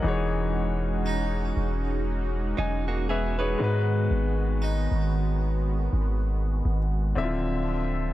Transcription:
Already playing: analog synth pad G#3 F#4, grand piano A#4 D#5
0.02 808-style bass E1, grand piano E3 D#4 F#4, analog synth pad C#4 D#4
0.07 grand piano G#4 C#5
1.06 harpsichord D#4
1.57 808-style bass E1
2.58 808-style bass E1, clean electric guitar F#3 D#4, grand piano D#5 G#5
2.88 clean electric guitar A#3 F#4
3.09 clean electric guitar B3 G#4, grand piano B4 E5
3.39 clean electric guitar D#4 B4, grand piano G#4 C#5
3.58 808-style bass G#2, analog synth pad D#3 B3, grand piano G#3 D#4 F#4
3.64 grand piano B4
4.11 808-style bass G#1
4.62 harpsichord D#4
4.91 808-style bass G#1
5.93 808-style bass G#1
6.65 808-style bass G#1
7.15 808-style bass D1, grand piano D3 C4 E4 E5, analog synth pad D3 F3 C4 E5
7.24 grand piano F4

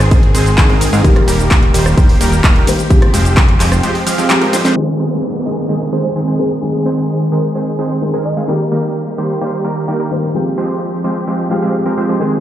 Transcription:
Already playing: felt piano D#3 G#3 C4 G#4 C5, string section D#3 G#3 C4 G#4
0.01 shaker
0.11 analog synth bass G#1, supersaw synth D#3 G#3 C4 G#4 C5, kick, closed hi-hat, ride, shaker
0.23 closed hi-hat
0.35 analog synth bass G#1, supersaw synth D#3 G#3 C4 G#4 C5, open hi-hat, ride, shaker
0.46 closed hi-hat, shaker
0.57 felt piano D#3 G#3 C4 G#4, kick, clap, closed hi-hat, ride, shaker
0.69 analog synth bass G#1, supersaw synth D#3 G#3 C4 G#4 A#4, closed hi-hat
0.81 open hi-hat, ride, shaker
0.93 analog synth bass G#2, supersaw synth D#3 G#3 C4 G#4 F5, closed hi-hat, shaker
1.03 analog synth bass D#1, felt piano D#3 G3 A#3 G4, supersaw synth D#3 G3 A#3 G4 A#4, string section G3 A#3 G4, kick, closed hi-hat, ride, shaker
1.16 cross-stick, closed hi-hat
1.28 analog synth bass D#1, supersaw synth D#3 G3 A#3 G4 A#4, open hi-hat, ride, shaker
1.39 closed hi-hat, shaker
1.51 kick, clap, closed hi-hat, ride, shaker
1.63 closed hi-hat
1.74 analog synth bass D#1, supersaw synth D#3 G3 A#3 G4 C5, open hi-hat, ride, shaker
1.86 cross-stick, shaker
1.97 analog synth bass D#1, supersaw synth D#3 G3 A#3 G4 C5, kick, closed hi-hat, ride, shaker
2.09 open hi-hat
2.21 analog synth bass D#1, supersaw synth D#3 G3 A#3 G4 A#4, open hi-hat, ride, shaker
2.32 closed hi-hat, shaker
2.44 analog synth bass D#1, supersaw synth D#3 G3 A#3 G4 A#4, kick, clap, closed hi-hat, ride, shaker
2.56 analog synth bass D#1, supersaw synth D#3 G3 A#3 G4 A#4, closed hi-hat
2.67 felt piano D#3 G3 A#3 C5, open hi-hat, ride, shaker
2.79 closed hi-hat, shaker
2.90 felt piano F3 G#3 C4 G4, string section F3 G#3 C4, kick, closed hi-hat, ride, shaker
3.02 cross-stick, closed hi-hat
3.14 analog synth bass F1, supersaw synth F3 G#3 C4 G4 C5, open hi-hat, ride, shaker
3.25 closed hi-hat, shaker
3.37 kick, clap, closed hi-hat, ride, shaker
3.49 closed hi-hat
3.60 analog synth bass F1, supersaw synth F3 G#3 C4 G4 C5, clap, open hi-hat, ride, shaker
3.72 cross-stick, closed hi-hat, shaker
3.83 supersaw synth F3 G#3 C4 G4 C5, closed hi-hat, ride, shaker
3.95 open hi-hat
4.07 supersaw synth F3 G#3 C4 G4 F5, open hi-hat, ride, shaker
4.18 supersaw synth F3 G#3 C4 G4 F5, closed hi-hat, shaker
4.29 felt piano F3 G#3 C4 G4, clap, closed hi-hat, ride, shaker
4.41 supersaw synth F3 G#3 C4 G4 A#4, closed hi-hat
4.53 supersaw synth F3 G#3 C4 G4 C5, snare, open hi-hat, ride, shaker
4.65 supersaw synth F3 G#3 C4 G4 C5, snare, closed hi-hat, shaker
4.75 felt piano D#3 G#3 C4 G#4, supersaw synth D#3 G#3 C4 G#4 C5, string section D#3 G#3 C4 G#4, downlifter
5.00 supersaw synth D#3 G#3 C4 G#4 C5
5.46 supersaw synth D#3 G#3 C4 G#4 D#5
5.69 supersaw synth D#3 G#3 C4 G#4 D#5
5.92 supersaw synth D#3 G#3 C4 G#4 C5, fm electric piano C5
6.04 fm electric piano C5
6.16 supersaw synth D#3 G#3 C4 G#4 C5
6.27 supersaw synth D#3 G#3 C4 G#4 C5
6.39 felt piano D#3 G#3 C4 C5, fm electric piano G#4
6.62 felt piano D#3 G#3 C4 G#4
6.86 supersaw synth D#3 G#3 C4 G#4 C5
7.32 supersaw synth D#3 G#3 C4 G#4 C5, fm electric piano A#4
7.55 supersaw synth D#3 G#3 C4 G#4 C5
7.79 supersaw synth D#3 G#3 C4 G#4 C5
8.01 felt piano D#3 G#3 C4 G#4
8.14 supersaw synth D#3 G#3 C4 G#4 A#4, fm electric piano C5
8.25 fm electric piano D#5
8.37 supersaw synth D#3 G#3 C4 G#4 F5
8.47 felt piano D#3 G3 A#3 G4, supersaw synth D#3 G3 A#3 G4 A#4, string section G3 A#3 G4
8.72 supersaw synth D#3 G3 A#3 G4 A#4
9.18 supersaw synth D#3 G3 A#3 G4 C5
9.41 supersaw synth D#3 G3 A#3 G4 C5
9.65 supersaw synth D#3 G3 A#3 G4 A#4
9.88 supersaw synth D#3 G3 A#3 G4 A#4
10.00 supersaw synth D#3 G3 A#3 G4 A#4
10.11 felt piano D#3 G3 A#3 C5
10.34 felt piano F3 G#3 C4 G4, string section F3 G#3 C4 G4
10.58 supersaw synth F3 G#3 C4 G4 C5
11.04 supersaw synth F3 G#3 C4 G4 C5
11.28 supersaw synth F3 G#3 C4 G4 C5
11.50 felt piano F3 G#3 C4 G4, supersaw synth F3 G#3 C4 G4 F5
11.62 supersaw synth F3 G#3 C4 G4 F5
11.86 supersaw synth F3 G#3 C4 G4 A#4
11.97 supersaw synth F3 G#3 C4 G4 C5
12.09 supersaw synth F3 G#3 C4 G4 C5
12.19 felt piano D#3 G#3 C4 G#4, string section D#3 G#4, supersaw synth D#3 G#3 C4 G#4 C5

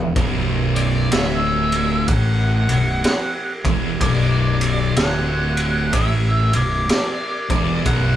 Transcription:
Already playing: fingered electric bass E1, distorted electric guitar E2
0.16 fingered electric bass B0, distorted electric guitar B1, kick, ride
0.75 lead electric guitar D5, ride
1.12 fingered electric bass D1, distorted electric guitar D2, lead electric guitar E5, snare, ride
1.72 ride
2.08 fingered electric bass A1, distorted electric guitar A2, lead electric guitar F#5, kick, ride
2.69 fingered electric bass B0, distorted electric guitar B1, ride
3.04 snare, ride
3.64 fingered electric bass E1, distorted electric guitar E2, kick, ride
4.00 fingered electric bass B0, distorted electric guitar B1, lead electric guitar D5, kick, ride
4.61 ride
4.96 fingered electric bass D1, distorted electric guitar D2, lead electric guitar F#5, snare, ride
5.57 ride
5.93 fingered electric bass A1, distorted electric guitar A2, lead electric guitar E5, kick, ride
6.53 fingered electric bass B0, distorted electric guitar B1, lead electric guitar D5, ride
6.89 lead electric guitar D5, snare, ride
7.49 fingered electric bass E1, distorted electric guitar E2, kick, ride
7.84 fingered electric bass B0, distorted electric guitar B1, lead electric guitar F#5, kick, ride

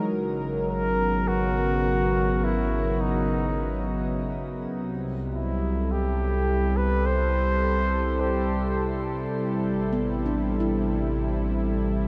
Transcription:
Already playing: analog synth pad E3 F#3 G#3 D#4 A#4
0.10 sub bass G#1, analog synth pad C#3
0.69 flugelhorn A#4
0.84 analog synth pad B3
1.28 flugelhorn F#4
2.44 flugelhorn E4
3.01 flugelhorn D#4
4.72 sub bass C2, analog synth pad C3
4.97 analog synth pad G3
5.34 flugelhorn E4
5.63 analog synth pad A4
5.91 analog synth pad E4, flugelhorn G4
6.77 flugelhorn B4
7.06 flugelhorn C5
8.20 flugelhorn G4
9.34 sub bass A1
9.93 handpan B3
10.26 handpan D4
10.60 handpan E4

